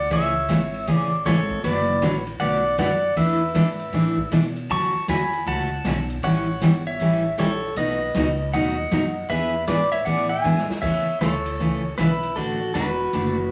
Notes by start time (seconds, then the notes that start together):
0.10 C#2 C#3 E3 A3 C#4 G#4 C#5 E5, kick, ride
0.49 G#1 C#3 E3 A3 C#4 G#4, kick, snare, hi-hat pedal, ride
0.74 ride
0.87 A1 C#3 E3 A3 C#4 G#4, kick, ride
0.94 D5
1.25 G#1 C#3 E3 A3 C#4 G#4 A4 C#5, kick, snare, hi-hat pedal, ride
1.50 kick
1.64 F#1 D3 F#3 A3 D4 F#4 B4 D5, kick, ride
2.02 A1 D3 F#3 A3 D4 F#4 B4, kick, snare, hi-hat pedal, ride
2.06 C#5
2.27 ride
2.40 B1 D3 F#3 A3 D4 F#4 B4 D5 F#5, kick, ride
2.78 F#2 D3 F#3 A3 D4 F#4 B4 D5 F#5, kick, snare, hi-hat pedal, ride
3.16 E2 E3 A3 D4 E4 A4 B4 E5, kick, ride
3.54 G#2 E3 A3 D4 E4 A4, kick, snare, hi-hat pedal, ride
3.79 ride
3.92 A2 E3 A3 D4 E4 A4, kick, snare, ride
4.18 kick
4.31 B2 E3 A3 D4 E4 A4, snare, hi-hat pedal, ride
4.56 ride
4.70 F#2 D3 F#3 A3 C#4 F#4 A5 C#6, kick, ride
4.95 muted upright bass stroke
5.08 E2 D3 F#3 A3 C#4 F#4 G#5 B5, kick, snare, hi-hat pedal, ride
5.33 ride
5.46 C#2 D3 F#3 A3 C#4 F#4 F#5 A5, kick, ride
5.84 B1 D3 F#3 A3 C#4 F#4, kick, snare, hi-hat pedal, ride
6.10 ride
6.23 A1 E3 G3 C#4 E4 A4 C#5 F#5, kick, ride
6.61 G1 E3 G3 C#4 E4 A4, kick, snare, hi-hat pedal, ride
6.87 C#5 E5
6.99 A1 E3 G3 C#4 E4 A4, kick, ride
7.38 A#1 E3 G3 C#4 E4 A4 C#5, kick, snare, hi-hat pedal, ride
7.76 B1 B2 F#3 A3 D#4 F#4 B4 D#5, kick, ride
8.14 C#2 B2 F#3 A3 D#4 F#4, kick, snare, hi-hat pedal, ride
8.53 D#2 B2 F#3 A3 D#4 F#4 D#5 F#5, kick, ride
8.91 F#2 B2 F#3 A3 D#4 F#4, kick, snare, hi-hat pedal, ride
9.29 E2 E3 B3 D4 G#4 B4 E5, kick, ride
9.67 G#2 E3 B3 D4 G#4 B4 D5, kick, snare, hi-hat pedal, ride
9.92 C#5 E5, ride
10.05 A2 E3 B3 D4 G#4 D5 F#5, kick, ride
10.29 E5 G#5
10.44 G#2 E3 B3 D4 G#4, hi-hat pedal
10.57 snare
10.69 muted upright bass stroke, snare
10.82 E2 C#3 E3 A3 C#4 A4 C#5 E5, kick, crash
11.21 D2 C#3 E3 A3 C#4 A4 C#5, kick, snare, hi-hat pedal, ride
11.46 ride
11.59 C#2 C#3 E3 A3 C#4 A4, kick
11.98 B1 C#3 E3 A3 C#4 E4 A4 B4, kick, snare, hi-hat pedal, ride
12.23 ride
12.36 A1 D3 A3 D4 F#4 A4, kick, ride
12.74 E1 D3 A3 D4 F#4 A4 B4, kick, snare, hi-hat pedal, ride
13.13 F#1 D3 A3 D4 F#4 A4, kick, ride